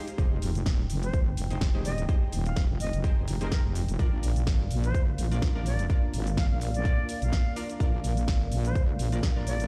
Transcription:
Already playing: analog synth pad G#3 D#4 F4
0.08 closed hi-hat, shaker
0.18 wobble bass F1, synth stab D#4 G4 G#4 C5, analog synth pad G5, kick, closed hi-hat, shaker
0.42 wobble bass F1, open hi-hat, shaker
0.55 closed hi-hat, shaker
0.66 wobble bass D#1, kick, snare, closed hi-hat, shaker
0.90 wobble bass F1, open hi-hat, shaker
1.03 flute C5, closed hi-hat, shaker
1.13 wobble bass G#1, kick, closed hi-hat, shaker
1.37 wobble bass F1, open hi-hat, shaker
1.50 synth stab D#4 G4 G#4 C5, closed hi-hat, shaker
1.61 wobble bass F1, kick, snare, closed hi-hat, shaker
1.74 synth stab D#4 G4 G#4 C5
1.85 flute D#5, open hi-hat, shaker
1.98 closed hi-hat, shaker
2.09 synth stab D#4 G4 G#4 C5, kick, closed hi-hat, shaker
2.32 wobble bass D#1, open hi-hat, shaker
2.46 flute F5, closed hi-hat, shaker
2.56 kick, snare, closed hi-hat, shaker
2.70 wobble bass F1
2.80 flute D#5, open hi-hat, shaker
2.93 wobble bass F1, closed hi-hat, shaker
3.04 synth stab D#4 G4 G#4 C5, kick, closed hi-hat, shaker
3.28 wobble bass F1, open hi-hat, shaker
3.41 synth stab D#4 G4 G#4 C5, flute A#4, closed hi-hat, shaker
3.52 flute A#4, kick, snare, closed hi-hat, shaker
3.65 wobble bass F1
3.75 open hi-hat, shaker
3.88 wobble bass F1, closed hi-hat, shaker
3.99 wobble bass A#1, analog synth pad A#3 A#4 D5 F5, synth stab D4 F4 A#4 D5, kick, closed hi-hat, shaker
4.23 wobble bass A#1, open hi-hat, shaker
4.36 closed hi-hat, shaker
4.47 wobble bass G#1, kick, snare, closed hi-hat, shaker
4.71 wobble bass A#1, open hi-hat, shaker
4.84 flute C5, closed hi-hat, shaker
4.94 wobble bass D2, kick, closed hi-hat, shaker
5.18 wobble bass A#1, open hi-hat, shaker
5.31 synth stab D4 F4 A#4 D5, closed hi-hat, shaker
5.42 wobble bass A#1, kick, snare, closed hi-hat, shaker
5.55 synth stab D4 F4 A#4 D5
5.66 flute D5, open hi-hat, shaker
5.79 closed hi-hat, shaker
5.90 synth stab D4 F4 A#4 D5, kick, closed hi-hat, shaker
6.14 wobble bass G#1, open hi-hat, shaker
6.27 closed hi-hat, shaker
6.37 flute F5, kick, snare, closed hi-hat, shaker
6.50 wobble bass A#1, flute F5
6.61 open hi-hat, shaker
6.74 flute D5, closed hi-hat, shaker
6.85 synth stab D4 F4 A#4 D5, kick, closed hi-hat, shaker
7.09 open hi-hat, shaker
7.22 wobble bass A#1, flute F5, closed hi-hat, shaker
7.33 kick, snare, closed hi-hat, shaker
7.56 synth stab D4 F4 A#4 D5, open hi-hat, shaker
7.70 closed hi-hat, shaker
7.80 wobble bass A#1, synth stab D4 F4 A#4 D5, kick, closed hi-hat, shaker
8.04 wobble bass A#1, open hi-hat, shaker
8.17 closed hi-hat, shaker
8.28 wobble bass G#1, kick, snare, closed hi-hat, shaker
8.52 wobble bass A#1, open hi-hat, shaker
8.65 flute C5, closed hi-hat, shaker
8.75 wobble bass D2, kick, closed hi-hat, shaker
8.99 wobble bass A#1, open hi-hat, shaker
9.12 synth stab D4 F4 A#4 D5, closed hi-hat, shaker
9.23 wobble bass A#1, kick, snare, closed hi-hat, shaker
9.36 synth stab D4 F4 A#4 D5
9.47 flute D5, open hi-hat, shaker
9.60 closed hi-hat, shaker

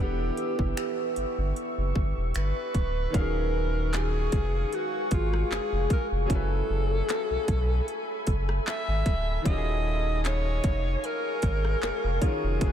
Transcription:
Already playing: grand piano E3 B3, ambient pad B4 E5 C#6 E6
0.00 sub bass E1, grand piano D4 G4 F#5, alto saxophone G4
0.37 closed hi-hat
0.59 sub bass F#1, kick
0.77 finger snap, closed hi-hat
1.16 sub bass G1, closed hi-hat
1.38 sub bass G1
1.56 closed hi-hat
1.78 sub bass F#1
1.96 sub bass G1, kick
2.18 sub bass E1
2.34 sub bass G1, alto saxophone B4, finger snap, closed hi-hat
2.74 sub bass D1, kick, closed hi-hat
3.10 grand piano D#3 C#4, ambient pad G#4 F5 G#5 C#6, kick
3.14 sub bass D#1, grand piano F#3 F5, alto saxophone A#4, closed hi-hat
3.20 grand piano G#4
3.93 alto saxophone G#4, synth bell G#5, clap, closed hi-hat
4.32 sub bass F1, kick, closed hi-hat
4.73 alto saxophone F#4, closed hi-hat
5.11 sub bass G#1, alto saxophone F4, kick, closed hi-hat
5.33 cross-stick
5.51 sub bass F1, alto saxophone G#4, clap
5.72 sub bass F1
5.90 alto saxophone A#4, kick, closed hi-hat
6.12 sub bass F1
6.26 grand piano F#3 C#4, alto saxophone G#4, ambient pad E5 G#5 B5
6.30 sub bass F#1, grand piano E4 A4 G#5, ambient pad A4, alto saxophone A4, kick, closed hi-hat
6.35 grand piano B4
6.70 sub bass F#1
7.09 clap, closed hi-hat
7.30 sub bass B1
7.48 sub bass B1, kick, closed hi-hat
7.88 closed hi-hat
8.27 sub bass F#1, kick, closed hi-hat
8.49 cross-stick
8.67 alto saxophone E5, clap
8.88 sub bass G#1
9.06 sub bass D1, synth bell B5, kick, closed hi-hat
9.41 grand piano D#3 C#4
9.45 sub bass D#1, grand piano F4 F#4, ambient pad G#4 F5 G#5 C#6, alto saxophone D#5, kick, closed hi-hat
9.51 grand piano G4
9.57 grand piano G#4
10.25 alto saxophone C#5, clap, closed hi-hat
10.64 sub bass F1, kick, closed hi-hat
11.03 alto saxophone A#4, synth bell G#5, closed hi-hat
11.42 sub bass G#1, kick, closed hi-hat
11.65 cross-stick
11.82 sub bass F1, clap
12.04 sub bass F1
12.20 grand piano D#3 C#4 F4 F#4, alto saxophone G#4, synth bell C#5, kick, closed hi-hat
12.25 grand piano A#4
12.44 sub bass F1
12.57 grand piano F#3 C#4 E4
12.61 sub bass F#1, grand piano A3 G#4, kick, closed hi-hat
12.67 grand piano B4

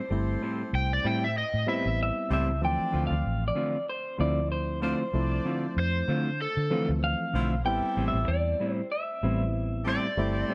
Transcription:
Already playing: clean electric guitar C5
0.09 fingered electric bass G1, reed electric piano G3 A3 C4 E4, horn section C4 G4 A4 C5
0.42 clean electric guitar A2 G3 C4 E4
0.73 fingered electric bass C2, electric slide guitar G5
0.93 electric slide guitar D5
1.04 clean electric guitar A2 G3 C4 E4, fingered electric bass A2, electric slide guitar G5
1.24 electric slide guitar E5
1.38 electric slide guitar D#5
1.54 fingered electric bass A2
1.66 clean electric guitar A2 G3 C4 E4, reed electric piano G3 B3 C4 E4, electric slide guitar E5
1.85 fingered electric bass A1
2.03 clean electric guitar E5
2.29 fingered electric bass C#2, clean electric guitar A2 G3 C4 E4, horn section C4 G4 A4 C5
2.33 clean electric guitar E5
2.61 fingered electric bass D2, reed electric piano E3 F3 A3 C4, horn section D4 C5 D5, clean electric guitar G5
2.79 muted fingered electric bass stroke
2.92 fingered electric bass D2, clean electric guitar D3 A3 C4 F4
3.07 clean electric guitar F5
3.11 fingered electric bass D2
3.25 fingered electric bass A1
3.48 clean electric guitar D5
3.55 clean electric guitar D3 A3 C4 F4
3.89 clean electric guitar C5
4.18 fingered electric bass D2, clean electric guitar D3 A3 C4 F4 D5, reed electric piano F3 A3 C4 E4
4.52 clean electric guitar C5
4.80 clean electric guitar D3 A3 C4 F4 C5, horn section D4 F4 C5 D5
5.12 fingered electric bass C2, reed electric piano F3 A3 C4 E4, horn section D4 C5 D5
5.45 clean electric guitar D3 A3 C4 F4
5.77 fingered electric bass F2, electric slide guitar C5
6.08 clean electric guitar D3 A3 C4 F4, fingered electric bass D3
6.42 electric slide guitar A4
6.57 fingered electric bass D3
6.70 clean electric guitar D3 A3 C4 F4, reed electric piano E3 F3 A3 C4
6.89 fingered electric bass D2
7.04 clean electric guitar F5
7.33 fingered electric bass B1, clean electric guitar D3 A3 C4 F4, horn section E4 F4 C5 E5
7.63 fingered electric bass A1, reed electric piano G3 B3 C4 E4, horn section E4 G4 A4 E5, clean electric guitar G5
7.82 muted fingered electric bass stroke
7.96 fingered electric bass A1, clean electric guitar A2 G3 C4 E4
8.08 clean electric guitar E5
8.14 fingered electric bass A1
8.28 fingered electric bass E2, clean electric guitar D5
8.60 clean electric guitar A2 G3 C4 E4
8.73 clean electric guitar C5
8.92 clean electric guitar E5
9.23 fingered electric bass A1, clean electric guitar A2 G3 C4 E4, reed electric piano G3 B3 C4 E4
9.84 clean electric guitar A2 G3 C4 E4, horn section C4 G4 A4 C5
9.89 electric slide guitar D5
10.17 fingered electric bass G1, reed electric piano G3 A3 C4 E4, horn section C4 G4 A4 C5
10.48 clean electric guitar A2 G3 C4 E4

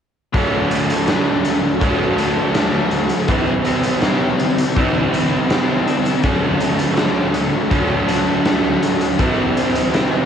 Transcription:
0.33 ambient pad D2 F#4, overdriven electric guitar D3 F#3 A3 D4, clean electric guitar A3, kick, closed hi-hat
0.71 closed hi-hat
0.90 closed hi-hat
1.06 overdriven electric guitar D3 F#3 A3 D4, clean electric guitar A3, snare, closed hi-hat
1.45 clean electric guitar A3, closed hi-hat
1.80 overdriven electric guitar D3 F#3 A3 D4, kick, closed hi-hat
2.17 overdriven electric guitar F#3 A3 D4, clean electric guitar A3, closed hi-hat
2.54 overdriven electric guitar D3 F#3 A3 D4, clean electric guitar A3, snare, closed hi-hat
2.91 closed hi-hat
3.10 closed hi-hat
3.28 overdriven electric guitar C3 G3 C4 E4, ambient pad D3 E3 C4, clean electric guitar E3, kick, closed hi-hat
3.65 clean electric guitar C4, closed hi-hat
3.83 closed hi-hat
4.02 overdriven electric guitar C3 G3 C4 E4, clean electric guitar E3, snare, closed hi-hat
4.39 clean electric guitar C4, closed hi-hat
4.58 closed hi-hat
4.75 overdriven electric guitar C3 G3 C4 E4, clean electric guitar D4, kick, closed hi-hat
5.13 clean electric guitar E3, overdriven electric guitar G3 C4 E4, closed hi-hat
5.49 overdriven electric guitar C3 G3 C4 E4, clean electric guitar C4, snare, closed hi-hat
5.86 clean electric guitar D4, closed hi-hat
6.05 closed hi-hat
6.22 ambient pad D2 F#4, overdriven electric guitar D3 F#3 A3 D4, clean electric guitar F#3, kick, closed hi-hat
6.60 clean electric guitar A3, closed hi-hat
6.79 closed hi-hat
6.96 overdriven electric guitar D3 F#3 A3 D4, clean electric guitar F#3, snare, closed hi-hat
7.34 clean electric guitar A3, closed hi-hat
7.70 overdriven electric guitar D3 F#3 A3 D4, kick, closed hi-hat
8.07 clean electric guitar F#3, overdriven electric guitar F#3 A3 D4, closed hi-hat
8.44 overdriven electric guitar D3 F#3 A3 D4, clean electric guitar A3, snare, closed hi-hat
8.83 snare, closed hi-hat
9.01 closed hi-hat
9.18 overdriven electric guitar C3 G3 C4 E4, ambient pad D3 E3 C4, clean electric guitar E3, kick, closed hi-hat
9.56 clean electric guitar C4, closed hi-hat
9.75 closed hi-hat
9.92 overdriven electric guitar C3 G3 C4 E4, clean electric guitar E3, snare, closed hi-hat

